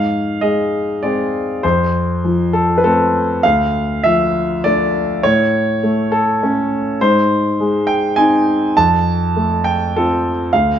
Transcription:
0.00 1.58 G#2 soft
0.00 0.41 F5 medium
0.41 1.02 G#3 soft
0.41 1.02 D#5 medium
1.03 1.59 G#3 soft
1.03 1.59 C4 soft
1.03 1.63 D5 medium
1.63 3.40 F2 soft
1.63 2.53 C5 medium
2.24 3.20 F3 soft
2.53 2.76 A4 medium
2.78 2.84 B4 soft
2.84 3.40 A3 soft
2.84 3.40 C4 soft
2.84 3.44 A4 medium
3.43 5.19 D2 soft
3.43 4.03 F5 medium
4.04 4.99 F3 soft
4.04 4.63 E5 medium
4.64 5.19 A3 soft
4.64 5.19 D4 soft
4.64 5.23 D5 medium
5.23 6.96 A2 medium
5.23 6.12 C#5 medium
5.83 6.42 A3 soft
6.12 6.40 A4 medium
6.43 6.96 A3 soft
6.43 6.96 C#4 soft
7.01 8.72 G#2 medium
7.01 7.87 C5 medium
7.60 8.52 G#3 soft
7.87 8.16 G5 medium
8.16 8.71 C4 soft
8.16 8.71 D#4 soft
8.16 8.75 G#5 medium
8.77 10.48 F2 medium
8.77 9.64 A5 medium
9.36 10.28 A3 soft
9.64 9.93 G5 medium
9.96 10.49 C4 soft
9.96 10.49 F4 soft
9.96 10.52 A4 medium
10.53 10.79 D2 soft
10.53 10.79 F5 medium

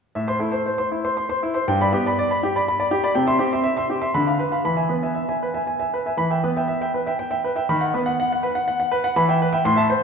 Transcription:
0.15 0.40 A2 medium
0.15 0.29 E5 soft
0.28 0.37 C5 soft
0.28 0.37 C6 medium
0.39 0.67 A3 soft
0.39 0.54 E4 medium
0.51 0.61 C5 soft
0.51 0.62 C6 soft
0.66 0.77 C5 medium
0.78 0.88 C5 soft
0.78 0.88 C6 medium
0.92 1.05 E4 soft
1.04 1.14 C5 soft
1.04 1.14 C6 medium
1.17 1.28 C6 medium
1.29 1.39 C5 soft
1.29 1.39 C6 medium
1.43 1.56 E4 medium
1.54 1.64 C5 medium
1.54 1.64 C6 medium
1.68 1.92 G2 medium
1.68 1.81 G5 medium
1.81 1.90 D5 medium
1.81 1.90 B5 medium
1.93 2.18 B3 medium
1.93 2.06 G4 medium
2.06 2.14 D5 medium
2.06 2.15 B5 medium
2.19 2.29 D5 medium
2.31 2.39 D5 medium
2.31 2.39 B5 medium
2.43 2.55 G4 medium
2.56 2.64 D5 medium
2.56 2.64 B5 medium
2.68 2.78 B5 medium
2.80 2.88 D5 medium
2.80 2.88 B5 medium
2.91 3.03 G4 medium
3.04 3.12 D5 medium
3.04 3.12 B5 medium
3.15 3.38 C3 medium
3.15 3.27 G5 medium
3.27 3.35 E5 medium
3.27 3.36 C6 medium
3.39 3.65 C4 medium
3.39 3.52 G4 medium
3.53 3.61 E5 medium
3.53 3.61 C6 medium
3.64 3.75 E5 medium
3.77 3.85 E5 medium
3.77 3.85 C6 medium
3.90 4.02 G4 medium
4.02 4.10 E5 medium
4.02 4.10 C6 medium
4.14 4.38 D3 medium
4.14 4.26 B5 medium
4.27 4.35 F5 soft
4.27 4.36 B5 medium
4.39 4.52 B4 medium
4.52 4.61 F5 soft
4.52 4.61 B5 soft
4.65 4.89 E3 medium
4.65 4.78 B5 medium
4.76 4.86 E5 soft
4.76 4.86 G#5 soft
4.89 5.16 B3 soft
4.89 5.03 B4 soft
5.03 5.12 E5 soft
5.03 5.12 G#5 soft
5.15 5.27 E5 soft
5.29 5.38 E5 soft
5.29 5.38 G#5 soft
5.43 5.55 B4 soft
5.54 5.63 E5 soft
5.54 5.64 G#5 soft
5.67 5.78 G#5 soft
5.79 5.89 E5 soft
5.79 5.89 G#5 soft
5.94 6.07 B4 soft
6.06 6.15 E5 soft
6.06 6.15 G#5 soft
6.17 6.42 E3 medium
6.17 6.31 B5 medium
6.31 6.40 E5 soft
6.31 6.40 G5 medium
6.44 6.70 B3 medium
6.44 6.57 B4 medium
6.57 6.66 E5 soft
6.57 6.66 G5 medium
6.68 6.80 E5 medium
6.81 6.90 E5 medium
6.81 6.91 G5 medium
6.94 7.07 B4 medium
7.07 7.15 E5 soft
7.07 7.16 G5 medium
7.19 7.29 G5 medium
7.31 7.40 E5 soft
7.31 7.40 G5 medium
7.44 7.57 B4 medium
7.56 7.65 E5 soft
7.56 7.65 G5 medium
7.69 7.93 D#3 medium
7.69 7.82 B5 medium
7.81 7.90 F#5 medium
7.94 8.19 B3 medium
7.94 8.07 B4 medium
8.06 8.15 F#5 medium
8.20 8.31 F#5 medium
8.33 8.40 F#5 medium
8.43 8.55 B4 medium
8.55 8.64 F#5 medium
8.68 8.78 F#5 medium
8.80 8.88 F#5 medium
8.92 9.04 B4 medium
9.04 9.13 F#5 medium
9.16 9.40 E3 medium
9.16 9.29 B5 medium
9.29 9.38 E5 medium
9.29 9.38 G5 medium
9.42 9.54 B4 medium
9.53 9.62 E5 medium
9.53 9.62 G5 medium
9.65 9.90 A2 medium
9.65 9.79 C6 medium
9.76 9.86 E5 medium
9.76 9.87 A5 medium
9.90 10.03 C5 medium

